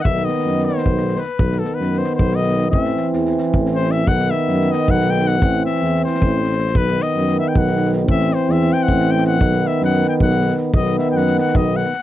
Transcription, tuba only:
\new Staff \with { instrumentName = "Tuba" } { \clef bass \time 7/8 \tempo 4 = 157 b,,4 fis,4 b,,4. | b,,4 fis,4 b,,4. | a,,4 e,4 a,,4. | b,,4 fis,4 b,,4. |
a,,4 e,4 a,,4. | b,,4 fis,4 b,,4. | a,,4 e,4 a,,4. | b,,4 fis,4 b,,4. |
b,,4 fis,4 b,,4. | }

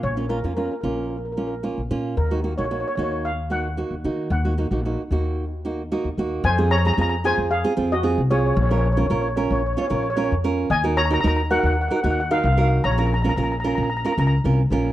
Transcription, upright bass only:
\new Staff \with { instrumentName = "Upright bass" } { \clef bass \time 4/4 \key bes \minor \tempo 4 = 112 bes,,8. f,8 r16 bes,,4.~ bes,,16 bes,,16 bes,8 | ees,8. bes,,8 r16 ees,4.~ ees,16 ees,16 ees8 | ees,8. bes,,8 r16 ees,4.~ ees,16 ees,16 ees,8 | f,4 f,8. f,8 r16 f,8. c,8. |
bes,,4 bes,,8. bes,,8 r16 bes,,8. f,8. | ees,4 ees,8. ees,8 r16 ees,8. c,8. | bes,,4 bes,,8. bes,,8 r16 des,8 c,8 bes,,8 | }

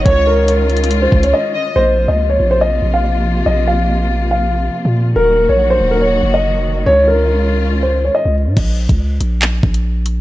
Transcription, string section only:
\new Staff \with { instrumentName = "String section" } { \time 4/4 \key bes \minor \tempo 4 = 141 << { <aes des' f'>1 | <f bes f'>1~ | <f bes f'>1 | <ges bes ges'>1 |
<aes des' f'>1 | r1 | } \\ { ees1 | c1~ | c1 | ees1~ |
ees1 | r1 | } >> }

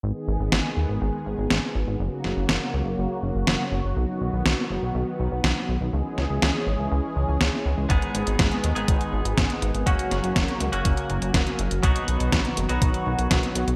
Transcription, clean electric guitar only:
\new Staff \with { instrumentName = "Clean electric guitar" } { \time 4/4 \key gis \minor \tempo 4 = 122 r1 | r1 | r1 | r1 |
<gis, gis b dis' gis'>4.~ <gis, gis b dis' gis'>16 <gis, gis b dis' gis'>2~ <gis, gis b dis' gis'>16 | <fis ais cis' fis'>4.~ <fis ais cis' fis'>16 <fis ais cis' fis'>2~ <fis ais cis' fis'>16 | <b, fis b dis' fis'>4.~ <b, fis b dis' fis'>16 <b, fis b dis' fis'>2~ <b, fis b dis' fis'>16 | }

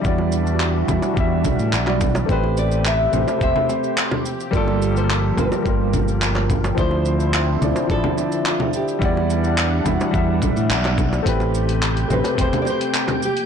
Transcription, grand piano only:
\new Staff \with { instrumentName = "Grand piano" } { \time 4/4 \key a \minor \tempo 4 = 107 <g e' fis' d''>4. <g e' fis' e''>8 <g e' fis' e''>4~ <g e' fis' e''>16 <g e' fis' d''>8. | <a c' g' b'>4. <a c' g' c''>8 <a c' g' c''>4. r8 | <g bes f' a'>4. <g bes f' bes'>8 <g bes f' bes'>2 | <f d' e' c''>4. <f d' e' d''>8 <f d' e' d''>2 |
<g e' d'' fis''>4. <g e' fis' e''>8 <g e' e'' fis''>2 | <a c' g' b'>4. <a c' g' c''>8 <a c' g' c''>4. r8 | }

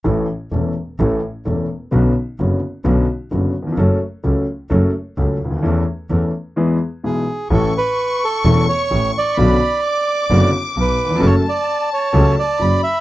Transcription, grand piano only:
\new Staff \with { instrumentName = "Grand piano" } { \clef bass \time 4/4 \key a \major \tempo 4 = 129 <a,, a, e a cis' a'>8 r8 <e,, e, e a cis' a'>8 r8 <a,, a, e a cis' a'>8 r8 <e,, e, e a cis' a'>8 r8 | <b,, b, d b cis' fis'>8 r8 <fis,, fis, d b cis' fis'>8 r8 <b,, b, d b cis' fis'>8 r8 <fis,, fis, d b cis' fis'>8 r32 dis,32 e,32 f,32 | <fis, fis a cis' a'>8 r8 <cis, cis fis a cis' a'>8 r8 <fis, fis a cis' a'>8 r8 <cis, cis fis a cis' a'>8 r32 cis,32 d,32 dis,32 | <e, e a cis' a'>8 r8 <e, e a cis' a'>8 r8 <e, e gis b gis'>8 r8 <b,, b, e gis b gis'>8 r8 |
<a,, a, e a cis' a'>8 r4. <e,, e, e a cis' a'>8 r8 <a,, a,>8 r8 | <b,, b, d b cis' fis'>8 r4. <fis,, fis, d b cis' fis'>8 r8 <b,, b,>8 r32 dis,32 e,32 f,32 | <fis, fis a cis' a'>8 r4. <cis, cis fis a cis' a'>8 r8 <fis, fis>8 r8 | }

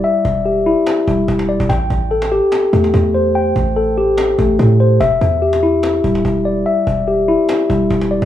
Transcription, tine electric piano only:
\new Staff \with { instrumentName = "Tine electric piano" } { \time 4/4 \key a \minor \tempo 4 = 145 <g e' d'' e''>4 g'8 e'4 g4 d''8 | g''4 a'8 g'4 a4 c''8 | g''4 a'8 g'4 a4 c''8 | e''4 g'8 e'4 g4 d''8 |
e''4 g'8 e'4 g4 d''8 | }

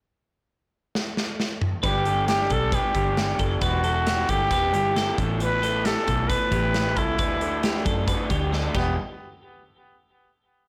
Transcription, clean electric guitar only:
\new Staff \with { instrumentName = "Clean electric guitar" } { \time 4/4 \key g \major \tempo 4 = 135 r1 | b'8 a'8 g'8 a'8 b'8 g'4 a'8 | b'8 a'8 g'8 a'8 b'8 g'8 a'4 | b'8 a'8 g'8 a'8 b'8 g'4 a'8 |
b'8 a'8 g'8 a'8 b'8 g'8 a'8 g'8 | r1 | }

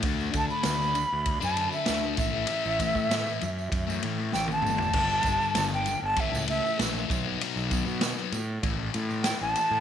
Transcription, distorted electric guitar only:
\new Staff \with { instrumentName = "Distorted electric guitar" } { \clef bass \time 4/4 \key a \dorian \tempo 4 = 98 <d a d'>8 <d a d'>8 <d a d'>16 <a d'>8. r16 <a d'>16 <d a d'>16 <a d'>16 <d a d'>16 <a d'>16 <a, e a>16 <e a>16 | <a, e a>8 <a, e a>8 <a, e a>16 <e a>8. r16 <e a>16 <a, e a>16 <e a>16 <a, e a>16 <e a>16 <a, e a>16 <e a>16 | <g, d g>8 <g, d g>8 <g, d g>16 <d g>8. <a, e a>16 <e a>16 <a, e a>16 <e a>16 <a, e a>16 <e a>16 <b, fis b>16 <fis b>16 | <b, fis b>8 <b, fis b>8 <b, fis b>16 <fis b>8. <a, e a>16 <e a>16 <a, e a>16 <e a>16 <a, e a>16 <e a>16 <a, e a>16 <e a>16 | }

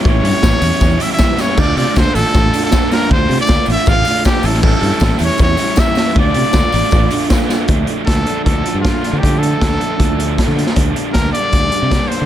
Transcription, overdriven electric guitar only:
\new Staff \with { instrumentName = "Overdriven electric guitar" } { \time 4/4 \key d \minor \tempo 4 = 157 <a, e g cis' e'>8 <a, e g cis' e'>8 <a, e g cis' e'>8 <a, e g cis' e'>8 <a, e g cis' e'>8 <a, e g cis' e'>8 <a, e g cis' e'>8 <a, e g cis' e'>8 | <d a d' f'>8 <d a d' f'>8 <d a d' f'>8 <d a d' f'>8 <d a d' f'>8 <d a d' f'>8 <d a d' f'>8 <d a d' f'>8 | <d a d' f'>8 <d a d' f'>8 <d a d' f'>8 <d a d' f'>8 <d a d' f'>8 <d a d' f'>8 <d a d' f'>8 <a, e g cis' e'>8 | <a, e g cis' e'>8 <a, e g cis' e'>8 <a, e g cis' e'>8 <a, e g cis' e'>8 <a, e g cis' e'>8 <a, e g cis' e'>8 <a, e g cis' e'>8 <a, e g cis' e'>8 |
<d a d' f'>8 <d a d' f'>8 <d a d' f'>8 <d a d' f'>8 <d a d' f'>8 <d a d' f'>8 <d a d' f'>8 <d a d' f'>8 | <d f a d'>8 <f a d'>8 <d f a d'>8 <d f a d'>8 <d f a d'>8 <d f a d'>8 <d f a d'>8 <f a d'>8 | <d f a d'>8 <f a d'>8 <d f a d'>8 <d f a d'>8 <d f a d'>8 <d f a d'>8 <d f a d'>8 <f a d'>8 | <d g bes d'>8 <g bes d'>8 <d g bes d'>8 <d g bes d'>8 <d g bes d'>8 <d g bes d'>8 <d g bes d'>8 <g bes d'>8 | }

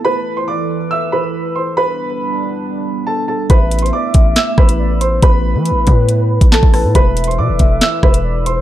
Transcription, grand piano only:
\new Staff \with { instrumentName = "Grand piano" } { \time 4/4 \key a \minor \tempo 4 = 139 <b' b''>8. <c'' c'''>16 <d'' d'''>4 <e'' e'''>8 <b' b''>4 <c'' c'''>8 | <b' b''>2. <a' a''>8 <a' a''>8 | <b' b''>8. <c'' c'''>16 <d'' d'''>4 <e'' e'''>8 <b' b''>4 <c'' c'''>8 | <b' b''>2. <a' a''>8 <a' a''>8 |
<b' b''>8. <c'' c'''>16 <d'' d'''>4 <e'' e'''>8 <b' b''>4 <c'' c'''>8 | }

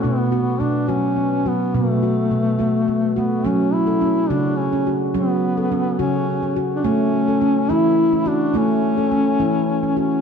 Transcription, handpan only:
<<
  \new Staff \with { instrumentName = "Handpan" } { \time 6/8 \key fis \phrygian \tempo 4. = 70 b8 fis'8 b8 fis'8 b8 fis'8 | b8 fis'8 b8 fis'8 b8 fis'8 | cis'8 r16 a'16 cis'8 fis'8 r16 cis'16 fis'8 | cis'8 r16 a'16 cis'8 fis'8 r16 cis'16 fis'8 |
cis'8 r16 a'16 cis'8 e'8 r16 cis'16 fis'8 | cis'8 r16 a'16 cis'8 e'8 r16 cis'16 fis'8 | }
  \new Staff \with { instrumentName = "Handpan" } { \clef bass \time 6/8 \key fis \phrygian b,4 b,8 fis8 r8 fis8 | b,4 b,8 a8 r8 a8 | fis4. cis4. | fis4. cis4. |
a4. e4. | a4. e4. | }
>>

